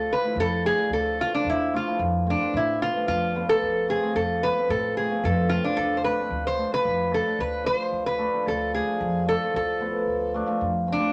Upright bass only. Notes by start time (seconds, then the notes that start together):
Already playing: D2
0.36 F2
0.90 D2
1.45 E2
1.99 F2
2.54 A2
3.07 F2
3.62 F2
4.15 F2
4.69 A2
5.24 F2
5.77 E2
6.30 D2
6.85 F2
7.39 D2
7.92 D2
8.47 D2
9.01 F2
9.54 D2
10.07 D2
10.61 F2